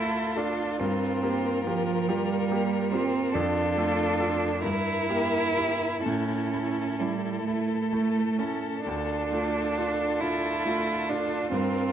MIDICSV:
0, 0, Header, 1, 5, 480
1, 0, Start_track
1, 0, Key_signature, -1, "minor"
1, 0, Tempo, 868307
1, 444, Time_signature, 6, 3, 24, 8
1, 919, Tempo, 843882
1, 2359, Tempo, 895522
1, 2839, Tempo, 940439
1, 4759, Tempo, 899550
1, 5719, Tempo, 867052
1, 6423, End_track
2, 0, Start_track
2, 0, Title_t, "Violin"
2, 0, Program_c, 0, 40
2, 0, Note_on_c, 0, 69, 39
2, 425, Note_off_c, 0, 69, 0
2, 448, Note_on_c, 0, 70, 49
2, 1856, Note_off_c, 0, 70, 0
2, 1865, Note_on_c, 0, 69, 47
2, 2567, Note_off_c, 0, 69, 0
2, 2584, Note_on_c, 0, 70, 47
2, 3300, Note_off_c, 0, 70, 0
2, 3317, Note_on_c, 0, 69, 36
2, 6176, Note_off_c, 0, 69, 0
2, 6205, Note_on_c, 0, 70, 47
2, 6423, Note_off_c, 0, 70, 0
2, 6423, End_track
3, 0, Start_track
3, 0, Title_t, "Viola"
3, 0, Program_c, 1, 41
3, 0, Note_on_c, 1, 65, 39
3, 1850, Note_off_c, 1, 65, 0
3, 1878, Note_on_c, 1, 65, 54
3, 2573, Note_off_c, 1, 65, 0
3, 2595, Note_on_c, 1, 64, 48
3, 4634, Note_off_c, 1, 64, 0
3, 4762, Note_on_c, 1, 65, 42
3, 6423, Note_off_c, 1, 65, 0
3, 6423, End_track
4, 0, Start_track
4, 0, Title_t, "Grand piano"
4, 0, Program_c, 2, 0
4, 0, Control_c, 2, 64, 127
4, 0, Note_on_c, 2, 38, 37
4, 0, Note_on_c, 2, 57, 35
4, 0, Note_on_c, 2, 65, 30
4, 0, Note_on_c, 2, 69, 37
4, 182, Note_off_c, 2, 57, 0
4, 182, Note_off_c, 2, 69, 0
4, 201, Note_off_c, 2, 65, 0
4, 201, Note_on_c, 2, 65, 27
4, 201, Note_on_c, 2, 69, 31
4, 421, Note_off_c, 2, 65, 0
4, 421, Note_off_c, 2, 69, 0
4, 423, Note_off_c, 2, 38, 0
4, 445, Note_on_c, 2, 43, 47
4, 455, Control_c, 2, 64, 0
4, 557, Control_c, 2, 64, 127
4, 679, Note_on_c, 2, 58, 31
4, 681, Note_on_c, 2, 67, 35
4, 895, Note_off_c, 2, 58, 0
4, 896, Note_off_c, 2, 67, 0
4, 923, Note_on_c, 2, 65, 37
4, 923, Note_on_c, 2, 67, 39
4, 1141, Note_off_c, 2, 65, 0
4, 1141, Note_off_c, 2, 67, 0
4, 1157, Note_on_c, 2, 65, 37
4, 1161, Note_on_c, 2, 67, 44
4, 1377, Note_off_c, 2, 65, 0
4, 1378, Note_off_c, 2, 67, 0
4, 1401, Note_on_c, 2, 58, 40
4, 1405, Note_on_c, 2, 67, 46
4, 1617, Note_off_c, 2, 58, 0
4, 1619, Note_off_c, 2, 67, 0
4, 1640, Note_on_c, 2, 65, 35
4, 1643, Note_on_c, 2, 67, 39
4, 1854, Note_off_c, 2, 65, 0
4, 1855, Note_off_c, 2, 43, 0
4, 1856, Note_off_c, 2, 67, 0
4, 1878, Note_on_c, 2, 41, 49
4, 1888, Control_c, 2, 64, 0
4, 1969, Control_c, 2, 64, 127
4, 2118, Note_on_c, 2, 57, 32
4, 2121, Note_on_c, 2, 69, 37
4, 2336, Note_off_c, 2, 57, 0
4, 2338, Note_off_c, 2, 69, 0
4, 2363, Note_on_c, 2, 69, 39
4, 2365, Note_on_c, 2, 65, 34
4, 2574, Note_off_c, 2, 41, 0
4, 2575, Note_off_c, 2, 69, 0
4, 2576, Note_off_c, 2, 65, 0
4, 2598, Note_on_c, 2, 43, 42
4, 2604, Control_c, 2, 64, 0
4, 2711, Control_c, 2, 64, 127
4, 2840, Note_on_c, 2, 58, 36
4, 2845, Note_on_c, 2, 67, 41
4, 3059, Note_off_c, 2, 58, 0
4, 3062, Note_off_c, 2, 67, 0
4, 3086, Note_on_c, 2, 64, 30
4, 3086, Note_on_c, 2, 67, 27
4, 3307, Note_off_c, 2, 43, 0
4, 3308, Note_off_c, 2, 64, 0
4, 3308, Note_off_c, 2, 67, 0
4, 3334, Control_c, 2, 64, 0
4, 3334, Note_on_c, 2, 45, 38
4, 3442, Control_c, 2, 64, 127
4, 3579, Note_on_c, 2, 57, 24
4, 3580, Note_on_c, 2, 64, 26
4, 3794, Note_off_c, 2, 57, 0
4, 3795, Note_off_c, 2, 64, 0
4, 3823, Note_on_c, 2, 64, 28
4, 4031, Note_off_c, 2, 64, 0
4, 4058, Note_on_c, 2, 64, 29
4, 4266, Note_off_c, 2, 64, 0
4, 4287, Note_on_c, 2, 57, 29
4, 4287, Note_on_c, 2, 64, 30
4, 4505, Note_off_c, 2, 57, 0
4, 4505, Note_off_c, 2, 64, 0
4, 4529, Note_on_c, 2, 64, 27
4, 4743, Note_off_c, 2, 64, 0
4, 4744, Note_off_c, 2, 45, 0
4, 4766, Note_on_c, 2, 38, 40
4, 4769, Control_c, 2, 64, 0
4, 4854, Control_c, 2, 64, 127
4, 5005, Note_on_c, 2, 57, 28
4, 5009, Note_on_c, 2, 65, 29
4, 5222, Note_off_c, 2, 57, 0
4, 5224, Note_off_c, 2, 65, 0
4, 5250, Note_on_c, 2, 62, 29
4, 5253, Note_on_c, 2, 65, 34
4, 5465, Note_off_c, 2, 62, 0
4, 5467, Note_off_c, 2, 65, 0
4, 5486, Note_on_c, 2, 62, 31
4, 5487, Note_on_c, 2, 65, 35
4, 5701, Note_off_c, 2, 62, 0
4, 5702, Note_off_c, 2, 65, 0
4, 5723, Note_on_c, 2, 57, 36
4, 5724, Note_on_c, 2, 65, 37
4, 5942, Note_off_c, 2, 57, 0
4, 5942, Note_off_c, 2, 65, 0
4, 5971, Note_on_c, 2, 62, 30
4, 5973, Note_on_c, 2, 65, 35
4, 6183, Note_off_c, 2, 38, 0
4, 6184, Note_off_c, 2, 62, 0
4, 6185, Note_off_c, 2, 65, 0
4, 6199, Note_on_c, 2, 43, 45
4, 6211, Control_c, 2, 64, 0
4, 6309, Control_c, 2, 64, 127
4, 6423, Note_off_c, 2, 43, 0
4, 6423, End_track
5, 0, Start_track
5, 0, Title_t, "Cello"
5, 0, Program_c, 3, 42
5, 0, Note_on_c, 3, 64, 59
5, 202, Note_on_c, 3, 62, 50
5, 211, Note_off_c, 3, 64, 0
5, 442, Note_on_c, 3, 60, 55
5, 451, Note_off_c, 3, 62, 0
5, 913, Note_off_c, 3, 60, 0
5, 916, Note_on_c, 3, 53, 60
5, 1159, Note_on_c, 3, 55, 70
5, 1168, Note_off_c, 3, 53, 0
5, 1634, Note_on_c, 3, 60, 69
5, 1642, Note_off_c, 3, 55, 0
5, 1872, Note_on_c, 3, 62, 65
5, 1881, Note_off_c, 3, 60, 0
5, 2584, Note_on_c, 3, 64, 71
5, 2592, Note_off_c, 3, 62, 0
5, 3320, Note_off_c, 3, 64, 0
5, 3329, Note_on_c, 3, 61, 53
5, 3812, Note_on_c, 3, 55, 46
5, 3820, Note_off_c, 3, 61, 0
5, 4041, Note_off_c, 3, 55, 0
5, 4044, Note_on_c, 3, 57, 53
5, 4521, Note_on_c, 3, 61, 45
5, 4529, Note_off_c, 3, 57, 0
5, 4757, Note_off_c, 3, 61, 0
5, 4761, Note_on_c, 3, 62, 63
5, 5480, Note_on_c, 3, 64, 65
5, 5488, Note_off_c, 3, 62, 0
5, 5962, Note_on_c, 3, 62, 60
5, 5970, Note_off_c, 3, 64, 0
5, 6200, Note_off_c, 3, 62, 0
5, 6203, Note_on_c, 3, 60, 67
5, 6423, Note_off_c, 3, 60, 0
5, 6423, End_track
0, 0, End_of_file